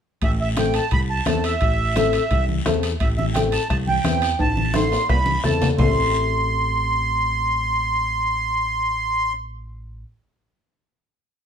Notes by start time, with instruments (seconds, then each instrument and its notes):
0.22 fingered electric bass A1, accordion E5, bombo low, high conga, high timbale, long guiro
0.41 accordion E5
0.57 nylon-string guitar C4 E4 A4, accordion G5, bombo rim, high conga, high timbale, short guiro
0.74 accordion A5, high timbale, short guiro
0.91 fingered electric bass C2, accordion B5, bombo low, high conga, high timbale, long guiro
1.10 accordion A5
1.26 fingered electric bass E2, nylon-string guitar C4 E4 A4, accordion A5, bombo rim, high conga, high timbale, low timbale, short guiro
1.44 accordion E5, high timbale, short guiro
1.61 fingered electric bass A1, bombo low, high conga, high timbale, long guiro
1.96 nylon-string guitar C4 E4 A4, bombo rim, high conga, high timbale, short guiro
2.13 high timbale, short guiro
2.31 fingered electric bass C2, bombo low, high conga, high timbale, long guiro
2.49 high conga
2.65 fingered electric bass E2, nylon-string guitar C4 E4 A4, bombo rim, high conga, high timbale, low timbale, short guiro
2.83 high timbale, short guiro
3.00 fingered electric bass A1, accordion E5, bombo low, high conga, high timbale, long guiro
3.17 accordion E5, high conga
3.34 nylon-string guitar C4 E4 A4, accordion G5, bombo rim, high conga, high timbale, short guiro
3.52 accordion A5, high timbale, short guiro
3.69 fingered electric bass C2, accordion A5, bombo low, bombo rim, high conga, high timbale, long guiro
3.87 accordion G5, high conga
4.04 fingered electric bass E2, nylon-string guitar C4 E4 B4, bombo rim, high conga, high timbale, short guiro
4.22 high timbale, short guiro
4.39 fingered electric bass A1, accordion A5, bombo low, high conga, high timbale, long guiro
4.57 high conga
4.74 nylon-string guitar C4 E4 A4, accordion C6, bombo rim, high conga, high timbale, short guiro
4.92 low timbale, short guiro
5.09 fingered electric bass C2, accordion B5, bombo low, bombo rim, high conga, low timbale, long guiro
5.26 high conga
5.44 fingered electric bass E2, nylon-string guitar C4 E4 A4, accordion A5, bombo rim, low conga, short guiro
5.62 low conga, low timbale, short guiro
5.77 fingered electric bass A1, nylon-string guitar C4 E4 A4, accordion C6, bombo low, low conga, low timbale, long guiro